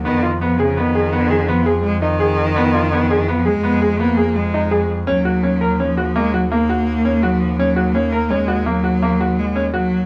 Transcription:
<<
  \new Staff \with { instrumentName = "Grand piano" } { \time 7/4 \key ees \minor \tempo 4 = 167 ces'8 f'8 ces'8 aes'8 ces'8 aes'8 ces'8 aes'8 ces'8 aes'4 ees'8 aes'4 | ces'8 f'8 ces'8 aes'8 ces'8 aes'8 ces'8 aes'8 ces'8 aes'4 ees'8 aes'4 | des'8 ges'8 des'8 bes'8 des'8 ges'8 bes8 ges'8 bes8 ges'4 des'8 ges'4 | des'8 ges'8 des'8 bes'8 des'8 ges'8 bes8 ges'8 bes8 ges'4 des'8 ges'4 | }
  \new Staff \with { instrumentName = "Cello" } { \clef bass \time 7/4 \key ees \minor ees4 f8 des8 ees2 f4 aes8 ees4.~ | ees2 f8 aes4. bes4 aes4. r8 | ges2 f4 aes8 ges8 bes2 ges8 f8 | ges4 bes4 aes4 ges2 aes4 ges4 | }
  \new Staff \with { instrumentName = "Double bass" } { \clef bass \time 7/4 \key ees \minor f,1.~ f,4~ | f,1.~ f,4 | ees,1.~ ees,4~ | ees,1.~ ees,4 | }
>>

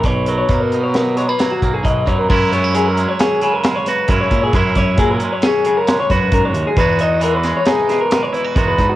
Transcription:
<<
  \new Staff \with { instrumentName = "Clean electric guitar" } { \time 5/4 \key fis \mixolydian \tempo 4 = 134 cis''8 ais'16 cis''8 ais'8 cis''16 ais'8 cis''16 b'8 fis'8 gis'16 dis''8 cis''16 ais'16 | ais'8 cis''8 gis'16 ais'8 cis''16 gis'8 gis'16 ais'8 cis''16 b'8 ais'16 cis''8 gis'16 | ais'8 cis''8 gis'16 ais'8 cis''16 gis'8 gis'16 ais'8 cis''16 b'8 ais'16 cis''8 gis'16 | b'8 dis''8 ais'16 b'8 cis''16 gis'8 gis'16 ais'8 cis''16 b'8 ais'16 b'8 fis'16 | }
  \new Staff \with { instrumentName = "Clean electric guitar" } { \clef bass \time 5/4 \key fis \mixolydian << { r4 ais8 dis'4 gis16 ais8. ais4. | <gis cis' e'>8 b16 cis'8. gis8 cis'4 gis8 fis'8 <gis cis' e'>8 cis'8 | <gis cis' e'>8 cis'4 gis8 cis'4 gis8 fis'4. | <gis dis' fis'>8 dis'4 gis8 dis'4 gis8 e'16 fis'16 <gis dis' fis'>8 dis'8 | } \\ { b,8 fis4. fis4 fis4 b,8 fis8 | fis,4 fis4. cis4. fis,4 | fis,4 fis4. cis4. gis,8 fis,8 | e,4 e4. b,4. e,4 | } >> }
  \new Staff \with { instrumentName = "Picked electric bass" } { \clef bass \time 5/4 \key fis \mixolydian b,,4 b,2 r8 b,,8 b,,8 fis,8 | fis,2 r2 fis,8 ais,8 | fis,8 fis,8 ais,8 r2 fis,8 fis,8 dis,16 r16 | e,2 r2 e,8 gis,8 | }
  \new DrumStaff \with { instrumentName = "Drums" } \drummode { \time 5/4 <hh bd>8 hh8 <hh bd>8 hh8 <hh sn>8 hh8 <hh sn>8 <hh bd>8 <hh bd>8 <hh bd>8 | <cymc bd>8 hh8 hh8 hh8 <hh sn>8 hh8 <hh sn>8 <hh sn>8 <hh bd>8 <hh bd>8 | <hh bd>8 <hh bd sn>8 <hh bd>8 hh8 <hh sn>8 hh8 <hh sn>8 <hh bd sn>8 <hh bd>8 hh8 | <hh bd>8 hh8 hh8 <hh sn>8 <hh sn>8 <hh sn>8 <hh sn>8 hh8 <hh bd>8 <hh bd>8 | }
>>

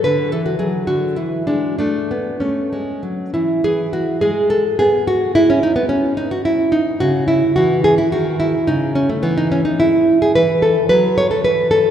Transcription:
\new Staff \with { instrumentName = "Nylon-string guitar" } { \time 3/4 \key a \major \tempo 4 = 107 << { b'8 a'16 fis'16 gis'8 fis'8 e'8 d'8 | d'4 cis'4. e'8 | \key cis \minor gis'8 fis'8 gis'8 a'8 gis'8 fis'8 | e'16 cis'16 dis'16 b16 cis'8 dis'16 fis'16 e'8 dis'8 |
fis'8 e'8 fis'8 gis'16 e'16 fis'8 e'8 | dis'8 cis'16 a16 b16 dis'16 cis'16 dis'16 e'8. gis'16 | \key e \mixolydian b'8 a'8 b'8 cis''16 a'16 b'8 a'8 | } \\ { d8 e8 fis8 d8 e8 gis8 | a8 b8 a8 gis8 fis8 e8 | e4 gis4 b4 | gis2. |
cis4 e4 dis4 | cis4 e4 gis4 | e4 fis4 e4 | } >> }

